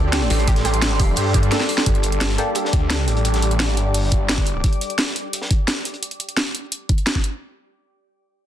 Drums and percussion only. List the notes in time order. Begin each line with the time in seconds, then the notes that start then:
0.13 snare, closed hi-hat
0.30 closed hi-hat, open hi-hat
0.39 closed hi-hat
0.48 kick, closed hi-hat
0.56 snare, closed hi-hat
0.65 cross-stick, closed hi-hat
0.74 closed hi-hat
0.82 snare, closed hi-hat
0.99 kick, closed hi-hat, open hi-hat
1.16 closed hi-hat, open hi-hat
1.34 kick, closed hi-hat
1.43 closed hi-hat
1.52 snare, closed hi-hat
1.60 snare, closed hi-hat
1.69 open hi-hat
1.78 snare
1.86 kick, closed hi-hat
1.95 closed hi-hat
2.03 closed hi-hat
2.12 closed hi-hat
2.21 snare, closed hi-hat
2.29 snare
2.38 closed hi-hat
2.55 closed hi-hat
2.65 snare
2.73 kick, closed hi-hat
2.90 snare, closed hi-hat
3.08 closed hi-hat
3.17 closed hi-hat
3.25 closed hi-hat
3.34 snare, closed hi-hat
3.42 closed hi-hat
3.51 closed hi-hat
3.60 snare, closed hi-hat
3.77 closed hi-hat
3.94 closed hi-hat, open hi-hat
4.12 kick, closed hi-hat
4.29 snare, closed hi-hat
4.38 kick, closed hi-hat
4.46 closed hi-hat
4.64 kick, closed hi-hat
4.73 closed hi-hat
4.81 closed hi-hat
4.90 closed hi-hat
4.98 snare, closed hi-hat
5.07 snare
5.16 closed hi-hat
5.33 closed hi-hat
5.42 snare
5.51 kick, closed hi-hat
5.68 snare, closed hi-hat
5.85 closed hi-hat
5.94 closed hi-hat
6.03 closed hi-hat
6.11 closed hi-hat
6.20 closed hi-hat
6.29 closed hi-hat
6.37 snare, closed hi-hat
6.55 closed hi-hat
6.72 closed hi-hat
6.89 kick, closed hi-hat
6.98 closed hi-hat
7.07 snare, closed hi-hat
7.15 kick, snare
7.24 closed hi-hat